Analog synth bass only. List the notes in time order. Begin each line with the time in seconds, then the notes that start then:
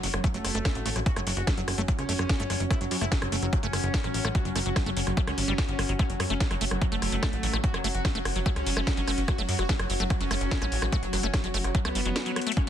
0.03 F#1
0.14 F#1
0.34 F#1
0.44 F#1
0.55 F#1
0.75 A1
0.86 A1
0.96 A1
1.16 F#1
1.27 F#1
1.37 F#1
1.57 F#1
1.68 F#1
1.78 F#1
1.99 C#2
2.09 F#1
2.19 F#1
2.40 G1
2.50 F#1
2.60 F#1
2.81 F#1
2.91 F#2
3.01 F#1
3.22 F#1
3.32 F#1
3.42 F#1
3.63 F#1
3.73 F#1
3.84 F#1
4.04 A1
4.14 A1
4.25 A1
4.45 F#1
4.55 F#1
4.66 F#1
4.86 F#1
4.97 F#1
5.07 F#1
5.27 C#2
5.38 G1
5.48 F#1
5.68 G1
5.79 G1
5.89 G1
6.10 F#1
6.20 F#2
6.30 F#1
6.51 F#1
6.61 F#1
6.71 F#1
6.92 F#1
7.02 F#1
7.12 F#1
7.33 A1
7.43 A1
7.53 A1
7.74 F#1
7.84 F#1
7.95 F#1
8.15 F#1
8.25 F#1
8.36 F#1
8.56 C#2
8.66 F#1
8.77 F#1
8.97 G1
9.08 F#1
9.18 F#1
9.38 F#1
9.49 F#2
9.59 F#1
9.79 F#1
9.90 F#1
10.00 F#1
10.21 F#1
10.31 F#1
10.41 F#1
10.62 A1
10.72 A1
10.82 A1
11.03 F#1
11.13 F#1
11.23 F#1
11.44 F#1
11.54 F#1
11.64 F#1
11.85 C#2
11.95 G1
12.05 F#1